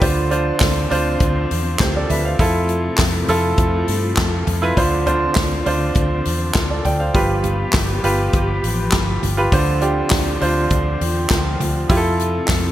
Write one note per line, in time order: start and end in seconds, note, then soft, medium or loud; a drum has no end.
0.01 0.50 D2 loud
0.01 2.37 D3 medium
0.01 0.87 D3 medium
0.01 7.11 F3 medium
0.01 2.37 C4 medium
0.01 0.26 D4 medium
0.01 0.26 F4 medium
0.01 0.27 C5 medium
0.01 kick loud
0.01 hi-hat pedal medium
0.01 open hi-hat medium
0.31 0.80 D4 medium
0.31 0.81 F4 medium
0.31 0.81 C5 medium
0.31 hi-hat pedal medium
0.31 open hi-hat medium
0.60 0.86 D2 medium
0.60 kick loud
0.60 snare loud
0.60 clap medium
0.60 hi-hat pedal medium
0.60 open hi-hat medium
0.90 1.15 D2 loud
0.90 1.89 D4 medium
0.90 1.90 F4 medium
0.90 1.79 C5 loud
0.90 hi-hat pedal medium
0.90 open hi-hat medium
1.20 1.45 D2 medium
1.20 kick loud
1.20 hi-hat pedal medium
1.20 open hi-hat medium
1.51 1.75 E2 medium
1.51 hi-hat pedal medium
1.51 open hi-hat medium
1.79 2.04 D2 loud
1.79 1.95 G4 soft
1.79 1.94 C5 medium
1.79 kick medium
1.79 snare loud
1.79 clap medium
1.79 hi-hat pedal medium
1.79 open hi-hat medium
1.96 2.10 A4 medium
1.96 2.10 D5 medium
2.10 2.34 D2 loud
2.10 2.24 B4 medium
2.10 2.24 E5 medium
2.10 floor tom medium
2.10 hi-hat pedal medium
2.10 open hi-hat medium
2.25 2.53 C5 soft
2.25 2.53 F5 medium
2.38 2.88 F2 loud
2.38 4.74 C3 medium
2.38 4.74 A3 medium
2.38 3.14 E4 medium
2.38 3.14 F4 medium
2.38 3.14 A4 medium
2.38 kick loud
2.38 hi-hat pedal medium
2.38 open hi-hat medium
2.69 hi-hat pedal medium
2.69 open hi-hat medium
2.98 3.23 F2 medium
2.98 kick loud
2.98 snare loud
2.98 clap medium
2.98 hi-hat pedal medium
2.98 open hi-hat medium
3.28 3.53 F2 loud
3.28 4.27 E4 medium
3.28 4.27 F4 medium
3.28 4.28 A4 loud
3.28 hi-hat pedal medium
3.28 open hi-hat medium
3.57 3.83 F2 medium
3.57 kick loud
3.57 hi-hat pedal medium
3.57 open hi-hat medium
3.88 4.12 G2 medium
3.88 hi-hat pedal medium
3.88 open hi-hat medium
4.17 4.42 F2 medium
4.17 kick medium
4.17 snare loud
4.17 clap medium
4.17 hi-hat pedal medium
4.17 open hi-hat medium
4.47 4.72 F2 medium
4.47 floor tom medium
4.47 hi-hat pedal medium
4.47 open hi-hat medium
4.62 4.74 E4 medium
4.62 4.75 F4 medium
4.62 4.75 B4 medium
4.76 5.26 D2 loud
4.76 7.12 D3 medium
4.76 5.62 D3 medium
4.76 7.12 C4 medium
4.76 5.02 D4 medium
4.76 5.02 F4 medium
4.76 5.02 C5 medium
4.76 kick medium
4.76 hi-hat pedal medium
4.76 open hi-hat medium
5.06 5.56 D4 medium
5.06 5.56 F4 medium
5.06 5.56 C5 medium
5.06 floor tom medium
5.06 hi-hat pedal medium
5.06 open hi-hat medium
5.35 5.61 D2 loud
5.35 kick loud
5.35 snare loud
5.35 clap medium
5.35 hi-hat pedal medium
5.35 open hi-hat medium
5.66 5.91 D2 loud
5.66 6.65 D4 medium
5.66 6.65 F4 medium
5.66 6.26 C5 medium
5.66 hi-hat pedal medium
5.66 open hi-hat medium
5.95 6.20 D2 medium
5.95 kick loud
5.95 hi-hat pedal medium
5.95 open hi-hat medium
6.25 6.50 E2 medium
6.25 hi-hat pedal medium
6.25 open hi-hat medium
6.55 6.80 D2 medium
6.55 kick medium
6.55 snare loud
6.55 clap medium
6.55 hi-hat pedal medium
6.55 open hi-hat medium
6.70 6.85 A4 soft
6.70 6.84 D5 medium
6.85 7.09 D2 medium
6.85 7.00 D5 medium
6.85 6.99 G5 medium
6.85 floor tom medium
6.85 hi-hat pedal medium
6.85 open hi-hat medium
7.00 7.28 C5 medium
7.00 7.28 F5 medium
7.14 7.63 G1 loud
7.14 8.00 G2 medium
7.14 9.50 F3 medium
7.14 9.50 B3 medium
7.14 7.88 F4 medium
7.14 9.50 G4 medium
7.14 7.89 G4 medium
7.14 7.89 B4 medium
7.14 kick loud
7.14 hi-hat pedal medium
7.14 open hi-hat medium
7.44 floor tom medium
7.44 hi-hat pedal medium
7.44 open hi-hat medium
7.73 7.99 G1 medium
7.73 kick loud
7.73 snare loud
7.73 clap medium
7.73 hi-hat pedal medium
7.73 open hi-hat medium
8.04 8.28 G1 medium
8.04 9.03 F4 medium
8.04 9.03 G4 medium
8.04 9.03 B4 medium
8.04 hi-hat pedal medium
8.04 open hi-hat medium
8.33 8.58 G1 medium
8.33 kick loud
8.33 hi-hat pedal medium
8.33 open hi-hat medium
8.63 8.87 A1 medium
8.63 hi-hat pedal medium
8.63 open hi-hat medium
8.92 9.17 G1 medium
8.92 kick loud
8.92 snare loud
8.92 clap medium
8.92 hi-hat pedal medium
8.92 open hi-hat medium
9.23 9.47 G1 medium
9.23 floor tom medium
9.23 hi-hat pedal medium
9.23 open hi-hat medium
9.37 9.50 F4 medium
9.37 9.50 G4 medium
9.37 9.50 B4 medium
9.52 10.01 D2 loud
9.52 11.87 D3 medium
9.52 10.38 D3 medium
9.52 12.72 F3 medium
9.52 11.87 C4 medium
9.52 9.77 D4 medium
9.52 9.77 F4 medium
9.52 9.78 C5 loud
9.52 kick loud
9.52 hi-hat pedal medium
9.52 open hi-hat medium
9.81 10.31 D4 medium
9.81 10.31 F4 medium
9.81 10.32 G4 medium
9.81 hi-hat pedal medium
9.81 open hi-hat medium
10.10 10.36 D2 medium
10.10 kick loud
10.10 snare loud
10.10 clap medium
10.10 hi-hat pedal medium
10.10 open hi-hat medium
10.41 10.66 D2 loud
10.41 11.40 D4 medium
10.41 11.40 F4 medium
10.41 11.40 C5 medium
10.41 hi-hat pedal medium
10.41 open hi-hat medium
10.70 10.95 D2 medium
10.70 kick loud
10.70 hi-hat pedal medium
10.70 open hi-hat medium
11.01 11.25 E2 medium
11.01 hi-hat pedal medium
11.01 open hi-hat medium
11.30 11.55 D2 loud
11.30 kick medium
11.30 snare loud
11.30 clap medium
11.30 hi-hat pedal medium
11.30 open hi-hat medium
11.60 11.84 D2 loud
11.60 floor tom medium
11.60 hi-hat pedal medium
11.60 open hi-hat medium
11.89 12.39 F2 loud
11.89 12.72 C3 medium
11.89 12.72 A3 medium
11.89 12.64 E4 medium
11.89 12.64 F4 medium
11.89 11.96 G4 medium
11.89 kick loud
11.89 hi-hat pedal medium
11.89 open hi-hat medium
11.97 12.67 A4 medium
12.19 hi-hat pedal medium
12.19 open hi-hat medium
12.48 12.72 F2 medium
12.48 kick loud
12.48 snare loud
12.48 clap loud
12.48 hi-hat pedal medium
12.48 open hi-hat medium